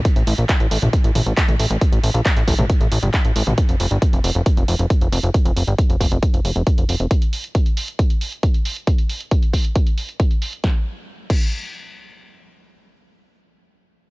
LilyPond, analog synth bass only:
\new Staff \with { instrumentName = "Analog synth bass" } { \clef bass \time 4/4 \key f \major \tempo 4 = 136 r16 a,,16 a,,16 bes,,16 r16 a,,16 a,,16 a,,16 r16 a,,16 a,,16 a,,16 r16 a,,16 a,,16 a,,16 | r16 a,,16 a,,16 bes,,16 r16 a,,16 a,,16 a,,16 r16 a,,16 a,,16 g,,16 r16 a,,16 a,,16 a,,16 | r16 f,,16 f,,16 g,,16 r16 f,,16 f,,16 f,,16 r16 f,,16 f,,16 f,,16 r16 f,,16 f,,16 f,,16 | r16 f,,16 f,,16 g,,16 r16 f,,16 f,,16 f,,16 r16 f,,16 f,,16 f,,16 r16 f,,16 f,,16 f,,16 |
r1 | r1 | r1 | r1 | }